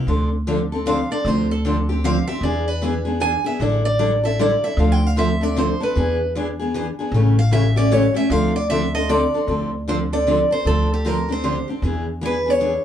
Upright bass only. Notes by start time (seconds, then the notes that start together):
0.07 D2
1.25 D2
2.41 E2
3.60 A1
4.77 D2
5.96 E2
7.12 A1
8.30 D2
9.47 D2
10.65 D2
11.82 E2